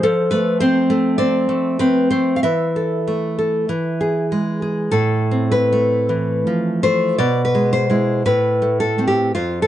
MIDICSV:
0, 0, Header, 1, 2, 480
1, 0, Start_track
1, 0, Key_signature, 0, "minor"
1, 0, Tempo, 1158301
1, 12, Time_signature, 2, 2, 24, 8
1, 492, Tempo, 1239669
1, 1932, Tempo, 1153846
1, 2412, Tempo, 1088929
1, 4003, End_track
2, 0, Start_track
2, 0, Title_t, "Nylon-string guitar"
2, 0, Program_c, 0, 24
2, 14, Note_on_c, 0, 53, 67
2, 14, Note_on_c, 0, 69, 85
2, 127, Note_on_c, 0, 71, 74
2, 130, Note_off_c, 0, 69, 0
2, 132, Note_on_c, 0, 57, 52
2, 248, Note_off_c, 0, 71, 0
2, 250, Note_on_c, 0, 72, 82
2, 255, Note_on_c, 0, 60, 58
2, 367, Note_off_c, 0, 57, 0
2, 372, Note_on_c, 0, 57, 54
2, 483, Note_off_c, 0, 72, 0
2, 488, Note_off_c, 0, 60, 0
2, 489, Note_on_c, 0, 74, 71
2, 493, Note_on_c, 0, 60, 54
2, 604, Note_off_c, 0, 57, 0
2, 608, Note_on_c, 0, 57, 53
2, 716, Note_off_c, 0, 74, 0
2, 725, Note_off_c, 0, 60, 0
2, 726, Note_on_c, 0, 71, 74
2, 729, Note_on_c, 0, 60, 52
2, 846, Note_off_c, 0, 57, 0
2, 846, Note_off_c, 0, 71, 0
2, 847, Note_on_c, 0, 72, 69
2, 851, Note_on_c, 0, 57, 44
2, 938, Note_off_c, 0, 72, 0
2, 947, Note_on_c, 0, 77, 51
2, 955, Note_off_c, 0, 53, 0
2, 970, Note_off_c, 0, 60, 0
2, 971, Note_off_c, 0, 57, 0
2, 972, Note_off_c, 0, 77, 0
2, 973, Note_on_c, 0, 76, 71
2, 976, Note_on_c, 0, 52, 61
2, 1101, Note_on_c, 0, 69, 43
2, 1223, Note_on_c, 0, 57, 50
2, 1338, Note_off_c, 0, 69, 0
2, 1343, Note_on_c, 0, 69, 47
2, 1443, Note_off_c, 0, 52, 0
2, 1459, Note_off_c, 0, 57, 0
2, 1459, Note_off_c, 0, 69, 0
2, 1461, Note_on_c, 0, 52, 53
2, 1584, Note_on_c, 0, 68, 45
2, 1683, Note_off_c, 0, 76, 0
2, 1704, Note_on_c, 0, 56, 45
2, 1817, Note_off_c, 0, 68, 0
2, 1822, Note_on_c, 0, 68, 42
2, 1921, Note_off_c, 0, 52, 0
2, 1934, Note_off_c, 0, 68, 0
2, 1936, Note_off_c, 0, 56, 0
2, 1936, Note_on_c, 0, 69, 73
2, 1938, Note_on_c, 0, 45, 59
2, 2102, Note_on_c, 0, 60, 48
2, 2165, Note_off_c, 0, 69, 0
2, 2185, Note_on_c, 0, 71, 72
2, 2273, Note_on_c, 0, 57, 49
2, 2426, Note_on_c, 0, 52, 44
2, 2590, Note_off_c, 0, 45, 0
2, 2592, Note_on_c, 0, 53, 44
2, 2723, Note_off_c, 0, 71, 0
2, 2750, Note_off_c, 0, 57, 0
2, 2752, Note_on_c, 0, 72, 79
2, 2756, Note_on_c, 0, 57, 48
2, 2818, Note_off_c, 0, 60, 0
2, 2895, Note_off_c, 0, 72, 0
2, 2900, Note_off_c, 0, 52, 0
2, 2901, Note_off_c, 0, 53, 0
2, 2903, Note_off_c, 0, 57, 0
2, 2908, Note_on_c, 0, 74, 77
2, 2910, Note_on_c, 0, 47, 63
2, 3019, Note_off_c, 0, 74, 0
2, 3023, Note_on_c, 0, 71, 62
2, 3067, Note_on_c, 0, 56, 44
2, 3137, Note_off_c, 0, 71, 0
2, 3147, Note_on_c, 0, 72, 73
2, 3216, Note_off_c, 0, 56, 0
2, 3221, Note_on_c, 0, 56, 42
2, 3226, Note_on_c, 0, 64, 47
2, 3362, Note_off_c, 0, 56, 0
2, 3364, Note_off_c, 0, 64, 0
2, 3367, Note_off_c, 0, 47, 0
2, 3371, Note_off_c, 0, 72, 0
2, 3380, Note_on_c, 0, 45, 57
2, 3381, Note_on_c, 0, 71, 69
2, 3540, Note_on_c, 0, 57, 45
2, 3608, Note_off_c, 0, 71, 0
2, 3620, Note_on_c, 0, 69, 72
2, 3694, Note_off_c, 0, 57, 0
2, 3700, Note_on_c, 0, 57, 42
2, 3702, Note_on_c, 0, 60, 50
2, 3737, Note_off_c, 0, 69, 0
2, 3741, Note_on_c, 0, 67, 69
2, 3840, Note_off_c, 0, 57, 0
2, 3841, Note_off_c, 0, 60, 0
2, 3843, Note_off_c, 0, 45, 0
2, 3856, Note_off_c, 0, 67, 0
2, 3861, Note_on_c, 0, 65, 71
2, 3863, Note_on_c, 0, 41, 56
2, 3974, Note_off_c, 0, 65, 0
2, 3982, Note_on_c, 0, 69, 68
2, 4003, Note_off_c, 0, 41, 0
2, 4003, Note_off_c, 0, 69, 0
2, 4003, End_track
0, 0, End_of_file